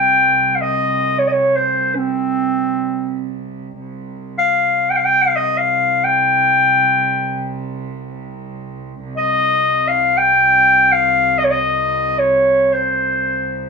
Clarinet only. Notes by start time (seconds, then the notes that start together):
Already playing: G5
0.56 F5
0.61 D#5
1.19 C#5
1.28 D#5
1.32 C#5
1.56 C5
1.95 C4 C#4
4.38 F5
4.90 G5
4.97 F5
5.05 G5
5.22 F5
5.36 D#5
5.58 F5
6.04 G5
9.17 D#5
9.88 F5
10.18 G5
10.92 F5
11.38 D#5
11.44 C#5
11.51 D#5
12.19 C#5
12.73 C5